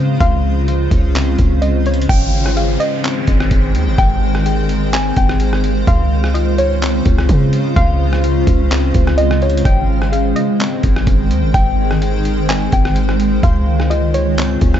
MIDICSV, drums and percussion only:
0, 0, Header, 1, 2, 480
1, 0, Start_track
1, 0, Key_signature, -4, "major"
1, 0, Tempo, 472441
1, 208, Time_signature, 4, 2, 24, 8
1, 15036, End_track
2, 0, Start_track
2, 0, Title_t, "Drums"
2, 208, Note_on_c, 9, 36, 119
2, 208, Note_on_c, 9, 42, 65
2, 310, Note_off_c, 9, 36, 0
2, 310, Note_off_c, 9, 42, 0
2, 691, Note_on_c, 9, 42, 76
2, 792, Note_off_c, 9, 42, 0
2, 927, Note_on_c, 9, 36, 94
2, 928, Note_on_c, 9, 42, 71
2, 1029, Note_off_c, 9, 36, 0
2, 1029, Note_off_c, 9, 42, 0
2, 1168, Note_on_c, 9, 42, 69
2, 1177, Note_on_c, 9, 39, 113
2, 1270, Note_off_c, 9, 42, 0
2, 1278, Note_off_c, 9, 39, 0
2, 1407, Note_on_c, 9, 42, 68
2, 1411, Note_on_c, 9, 36, 84
2, 1508, Note_off_c, 9, 42, 0
2, 1512, Note_off_c, 9, 36, 0
2, 1645, Note_on_c, 9, 42, 74
2, 1747, Note_off_c, 9, 42, 0
2, 1887, Note_on_c, 9, 42, 42
2, 1967, Note_off_c, 9, 42, 0
2, 1967, Note_on_c, 9, 42, 59
2, 2048, Note_off_c, 9, 42, 0
2, 2048, Note_on_c, 9, 42, 76
2, 2127, Note_off_c, 9, 42, 0
2, 2127, Note_on_c, 9, 36, 120
2, 2127, Note_on_c, 9, 42, 66
2, 2229, Note_off_c, 9, 36, 0
2, 2229, Note_off_c, 9, 42, 0
2, 2497, Note_on_c, 9, 37, 87
2, 2599, Note_off_c, 9, 37, 0
2, 2611, Note_on_c, 9, 42, 77
2, 2712, Note_off_c, 9, 42, 0
2, 2848, Note_on_c, 9, 42, 71
2, 2950, Note_off_c, 9, 42, 0
2, 3088, Note_on_c, 9, 42, 73
2, 3096, Note_on_c, 9, 39, 118
2, 3189, Note_off_c, 9, 42, 0
2, 3198, Note_off_c, 9, 39, 0
2, 3326, Note_on_c, 9, 42, 74
2, 3330, Note_on_c, 9, 36, 91
2, 3428, Note_off_c, 9, 42, 0
2, 3432, Note_off_c, 9, 36, 0
2, 3459, Note_on_c, 9, 37, 97
2, 3560, Note_off_c, 9, 37, 0
2, 3565, Note_on_c, 9, 42, 81
2, 3568, Note_on_c, 9, 36, 91
2, 3666, Note_off_c, 9, 42, 0
2, 3670, Note_off_c, 9, 36, 0
2, 3808, Note_on_c, 9, 42, 72
2, 3910, Note_off_c, 9, 42, 0
2, 4047, Note_on_c, 9, 36, 121
2, 4047, Note_on_c, 9, 42, 67
2, 4148, Note_off_c, 9, 42, 0
2, 4149, Note_off_c, 9, 36, 0
2, 4418, Note_on_c, 9, 37, 86
2, 4519, Note_off_c, 9, 37, 0
2, 4530, Note_on_c, 9, 42, 78
2, 4632, Note_off_c, 9, 42, 0
2, 4768, Note_on_c, 9, 42, 72
2, 4869, Note_off_c, 9, 42, 0
2, 5008, Note_on_c, 9, 42, 75
2, 5017, Note_on_c, 9, 39, 119
2, 5110, Note_off_c, 9, 42, 0
2, 5119, Note_off_c, 9, 39, 0
2, 5247, Note_on_c, 9, 42, 72
2, 5251, Note_on_c, 9, 36, 88
2, 5349, Note_off_c, 9, 42, 0
2, 5352, Note_off_c, 9, 36, 0
2, 5379, Note_on_c, 9, 37, 98
2, 5480, Note_off_c, 9, 37, 0
2, 5485, Note_on_c, 9, 42, 76
2, 5587, Note_off_c, 9, 42, 0
2, 5617, Note_on_c, 9, 37, 91
2, 5719, Note_off_c, 9, 37, 0
2, 5728, Note_on_c, 9, 42, 71
2, 5830, Note_off_c, 9, 42, 0
2, 5968, Note_on_c, 9, 36, 118
2, 5968, Note_on_c, 9, 42, 69
2, 6069, Note_off_c, 9, 42, 0
2, 6070, Note_off_c, 9, 36, 0
2, 6338, Note_on_c, 9, 37, 89
2, 6440, Note_off_c, 9, 37, 0
2, 6452, Note_on_c, 9, 42, 79
2, 6553, Note_off_c, 9, 42, 0
2, 6689, Note_on_c, 9, 42, 70
2, 6791, Note_off_c, 9, 42, 0
2, 6929, Note_on_c, 9, 42, 74
2, 6938, Note_on_c, 9, 39, 123
2, 7031, Note_off_c, 9, 42, 0
2, 7039, Note_off_c, 9, 39, 0
2, 7167, Note_on_c, 9, 42, 72
2, 7171, Note_on_c, 9, 36, 88
2, 7269, Note_off_c, 9, 42, 0
2, 7273, Note_off_c, 9, 36, 0
2, 7300, Note_on_c, 9, 37, 101
2, 7401, Note_off_c, 9, 37, 0
2, 7406, Note_on_c, 9, 42, 75
2, 7409, Note_on_c, 9, 36, 92
2, 7508, Note_off_c, 9, 42, 0
2, 7511, Note_off_c, 9, 36, 0
2, 7649, Note_on_c, 9, 42, 73
2, 7751, Note_off_c, 9, 42, 0
2, 7888, Note_on_c, 9, 36, 120
2, 7888, Note_on_c, 9, 42, 64
2, 7990, Note_off_c, 9, 36, 0
2, 7990, Note_off_c, 9, 42, 0
2, 8258, Note_on_c, 9, 37, 87
2, 8359, Note_off_c, 9, 37, 0
2, 8371, Note_on_c, 9, 42, 77
2, 8472, Note_off_c, 9, 42, 0
2, 8607, Note_on_c, 9, 36, 98
2, 8607, Note_on_c, 9, 42, 74
2, 8709, Note_off_c, 9, 36, 0
2, 8709, Note_off_c, 9, 42, 0
2, 8848, Note_on_c, 9, 42, 75
2, 8856, Note_on_c, 9, 39, 116
2, 8949, Note_off_c, 9, 42, 0
2, 8958, Note_off_c, 9, 39, 0
2, 9086, Note_on_c, 9, 42, 73
2, 9091, Note_on_c, 9, 36, 91
2, 9188, Note_off_c, 9, 42, 0
2, 9192, Note_off_c, 9, 36, 0
2, 9218, Note_on_c, 9, 37, 100
2, 9320, Note_off_c, 9, 37, 0
2, 9325, Note_on_c, 9, 42, 74
2, 9427, Note_off_c, 9, 42, 0
2, 9458, Note_on_c, 9, 37, 92
2, 9559, Note_off_c, 9, 37, 0
2, 9568, Note_on_c, 9, 42, 44
2, 9647, Note_off_c, 9, 42, 0
2, 9647, Note_on_c, 9, 42, 59
2, 9728, Note_off_c, 9, 42, 0
2, 9728, Note_on_c, 9, 42, 74
2, 9807, Note_off_c, 9, 42, 0
2, 9807, Note_on_c, 9, 42, 68
2, 9808, Note_on_c, 9, 36, 115
2, 9909, Note_off_c, 9, 36, 0
2, 9909, Note_off_c, 9, 42, 0
2, 10177, Note_on_c, 9, 37, 88
2, 10279, Note_off_c, 9, 37, 0
2, 10291, Note_on_c, 9, 42, 76
2, 10393, Note_off_c, 9, 42, 0
2, 10527, Note_on_c, 9, 42, 71
2, 10629, Note_off_c, 9, 42, 0
2, 10768, Note_on_c, 9, 42, 73
2, 10777, Note_on_c, 9, 39, 114
2, 10870, Note_off_c, 9, 42, 0
2, 10878, Note_off_c, 9, 39, 0
2, 11007, Note_on_c, 9, 42, 71
2, 11011, Note_on_c, 9, 36, 88
2, 11109, Note_off_c, 9, 42, 0
2, 11112, Note_off_c, 9, 36, 0
2, 11139, Note_on_c, 9, 37, 92
2, 11241, Note_off_c, 9, 37, 0
2, 11246, Note_on_c, 9, 42, 79
2, 11248, Note_on_c, 9, 36, 93
2, 11348, Note_off_c, 9, 42, 0
2, 11350, Note_off_c, 9, 36, 0
2, 11489, Note_on_c, 9, 42, 73
2, 11590, Note_off_c, 9, 42, 0
2, 11727, Note_on_c, 9, 36, 122
2, 11727, Note_on_c, 9, 42, 66
2, 11829, Note_off_c, 9, 36, 0
2, 11829, Note_off_c, 9, 42, 0
2, 12098, Note_on_c, 9, 37, 88
2, 12199, Note_off_c, 9, 37, 0
2, 12210, Note_on_c, 9, 42, 79
2, 12312, Note_off_c, 9, 42, 0
2, 12448, Note_on_c, 9, 42, 71
2, 12549, Note_off_c, 9, 42, 0
2, 12688, Note_on_c, 9, 42, 73
2, 12697, Note_on_c, 9, 39, 120
2, 12790, Note_off_c, 9, 42, 0
2, 12798, Note_off_c, 9, 39, 0
2, 12926, Note_on_c, 9, 42, 72
2, 12930, Note_on_c, 9, 36, 94
2, 13028, Note_off_c, 9, 42, 0
2, 13032, Note_off_c, 9, 36, 0
2, 13058, Note_on_c, 9, 37, 96
2, 13160, Note_off_c, 9, 37, 0
2, 13165, Note_on_c, 9, 42, 77
2, 13267, Note_off_c, 9, 42, 0
2, 13297, Note_on_c, 9, 37, 91
2, 13399, Note_off_c, 9, 37, 0
2, 13408, Note_on_c, 9, 42, 72
2, 13510, Note_off_c, 9, 42, 0
2, 13648, Note_on_c, 9, 36, 117
2, 13648, Note_on_c, 9, 42, 65
2, 13749, Note_off_c, 9, 36, 0
2, 13749, Note_off_c, 9, 42, 0
2, 14018, Note_on_c, 9, 37, 84
2, 14119, Note_off_c, 9, 37, 0
2, 14131, Note_on_c, 9, 42, 75
2, 14233, Note_off_c, 9, 42, 0
2, 14369, Note_on_c, 9, 42, 76
2, 14470, Note_off_c, 9, 42, 0
2, 14609, Note_on_c, 9, 42, 76
2, 14617, Note_on_c, 9, 39, 118
2, 14710, Note_off_c, 9, 42, 0
2, 14719, Note_off_c, 9, 39, 0
2, 14846, Note_on_c, 9, 42, 70
2, 14851, Note_on_c, 9, 36, 88
2, 14948, Note_off_c, 9, 42, 0
2, 14952, Note_off_c, 9, 36, 0
2, 14979, Note_on_c, 9, 37, 94
2, 15036, Note_off_c, 9, 37, 0
2, 15036, End_track
0, 0, End_of_file